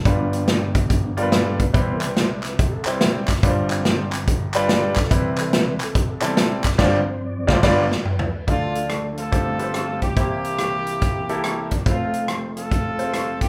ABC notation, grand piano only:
X:1
M:4/4
L:1/8
Q:"Swing" 1/4=142
K:C
V:1 name="Grand piano"
[G,DFB]3 z2 [G,DF_B=B]2 z | [G,CEB]3 z2 [G,CEc]2 z | [G,DFBc]3 z2 [G,DFB]2 z | [G,CEB]3 z2 [G,CEA]2 z |
[G,,,G,,G,DFc] z2 [G,,,G,,G,DFc] [G,,,G,,G,DFB] z3 | [A,DEFd]3 z [A,FGc] [A,FGBc]2 z | [_B,EGc]3 z2 [B,EGA]2 z | [A,CFBc]3 z2 [_A,=A,CFc]2 z |]
V:2 name="Grand piano" clef=bass
[G,,,G,,]8 | [C,,C,]8 | [G,,,G,,]8 | [C,,C,]8 |
z8 | [D,,D,]4 [G,,,G,,]4 | [C,,C,]8 | [F,,,F,,]8 |]